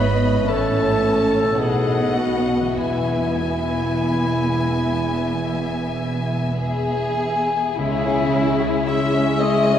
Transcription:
Already playing: G#1 G#2 G#3 B3 E4 B4 D#5 B5
0.32 A2
0.36 C#4
0.40 E4
0.45 A2 A4
0.50 A1 C#4 A4 C#5 A5
1.04 C#4
1.42 B2
1.47 B3
1.51 D#4
1.55 B2 G#4 A4 D#5
1.60 B1 B3 F#5
2.17 F#4
2.60 E3
2.65 B3
2.70 E4
2.74 E2 B3 E4 G#4 E5 G#5
2.79 E1
6.59 G#4 G#5
7.77 C#2 C#3 G#3 C#4 E4 G#4 E5
8.06 C#4
8.32 C#4 E4
8.59 E4 G#4
8.86 E4 G#4 E5 E6
9.14 C#4 C#5
9.38 D#5 E5 D#6
9.42 G#3
9.69 C#4

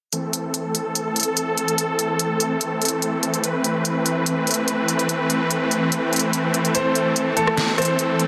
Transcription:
0.13 E3 A3 C4 A4, closed hi-hat
0.33 closed hi-hat
0.54 closed hi-hat
0.75 closed hi-hat
0.95 closed hi-hat
1.16 closed hi-hat
1.20 closed hi-hat
1.23 closed hi-hat
1.37 closed hi-hat
1.58 closed hi-hat
1.68 closed hi-hat
1.78 closed hi-hat
1.99 closed hi-hat
2.19 closed hi-hat
2.40 closed hi-hat
2.61 closed hi-hat
2.82 closed hi-hat
2.85 closed hi-hat
2.88 closed hi-hat
3.02 closed hi-hat
3.23 closed hi-hat
3.34 closed hi-hat
3.44 B4, closed hi-hat
3.64 closed hi-hat
3.85 closed hi-hat
4.06 closed hi-hat
4.26 closed hi-hat
4.47 closed hi-hat
4.51 closed hi-hat
4.54 closed hi-hat
4.68 closed hi-hat
4.88 closed hi-hat
4.99 closed hi-hat
5.09 closed hi-hat
5.30 closed hi-hat
5.51 closed hi-hat
5.71 closed hi-hat
5.92 closed hi-hat
6.13 closed hi-hat
6.16 closed hi-hat
6.19 closed hi-hat
6.33 closed hi-hat
6.54 closed hi-hat
6.65 closed hi-hat
6.75 A4 C5, closed hi-hat
6.95 closed hi-hat
7.16 closed hi-hat
7.37 A4, closed hi-hat
7.47 cross-stick
7.57 snare, closed hi-hat
7.78 C5, cross-stick, closed hi-hat
7.82 closed hi-hat
7.85 closed hi-hat
7.99 closed hi-hat
8.20 closed hi-hat

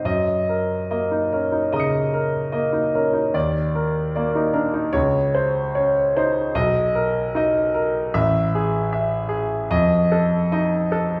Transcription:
0.04 F#2 D#5
0.49 A#4
0.91 A#3 D#5
1.11 D#4
1.32 C#4 A#4
1.52 D#4
1.72 C#3 D#5 A#5 D#6
1.80 C#7
2.14 A#4
2.52 A#3 D#5
2.73 D#4
2.95 C#4 A#4
3.13 D#4
3.34 D#2 D5
3.75 A#4
4.15 A#3 D5
4.35 D#4
4.53 D4 A#4
4.74 D#4
4.93 C#2 C#5
5.35 C5
5.75 C#4 C#5
6.17 D#4 C5
6.55 B1 D#5
6.95 A#4
7.35 D#4 D#5
7.74 A#4
8.14 A1 E5
8.55 G#4
8.93 E5
9.29 G#4
9.71 F2 D#5
10.12 A4
10.52 D#4 D#5
10.92 A4

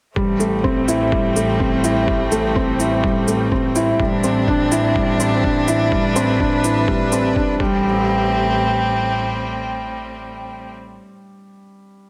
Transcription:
0.16 A1 G3 A3 C4, kick
0.40 A3, shaker
0.64 C4, kick
0.88 E4, shaker
1.12 G3, kick
1.36 A3, shaker
1.60 C4, kick
1.84 E4, shaker
2.08 G3, kick
2.32 A3, shaker
2.56 C4, kick
2.79 E4, shaker
3.03 G3, kick
3.27 A3, shaker
3.52 C4, kick
3.76 E4, shaker
3.99 A1 E3 G3 C4 D4, kick
4.24 C4, shaker
4.48 D4, kick
4.72 E4, shaker
4.96 G3, kick
5.20 C4, shaker
5.44 D4, kick
5.68 E4, shaker
5.92 G3 B4, kick
6.16 C4, shaker
6.40 D4, kick
6.64 E4, shaker
6.88 G3, kick
7.12 C4, shaker
7.36 D4, kick
7.60 A1 A2 G3 C4, kick

